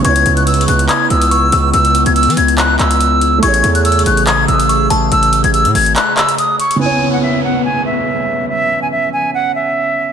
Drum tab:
HH |x--x--x--x--x-x-x-x--x--x-----x--x--x-----x-----|x--x--x--x--x-x-x-x--x--x-----x--x--x-----x-----|x--x--x--x--x-x-x-x--x--x-----x--x--x-----x-----|x--x--x--x--x--x--o--x--x-----x--x--x-----x--x--|
CP |------------------------x-----------------------|------------------------x-----x-----------------|------------------------x-----------------------|------------------------x-----x-----------------|

HH |------------------------------------------------|------------------------------------------------|
CP |------------------------------------------------|------------------------------------------------|